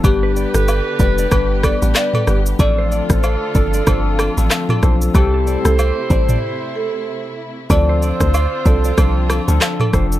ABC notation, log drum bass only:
X:1
M:4/4
L:1/16
Q:"Swing 16ths" 1/4=94
K:Ddor
V:1 name="Log drum bass" clef=bass
G,,,3 G,,,2 z F,,,2 G,,,3 A,,, z2 G,,,2 | A,,,3 A,,,2 z G,,,2 G,,,3 A,,, z2 B,,,2 | C,,3 C,,2 z A,,,2 z8 | D,,3 D,,2 z C,,2 C,,3 D,, z2 F,,,2 |]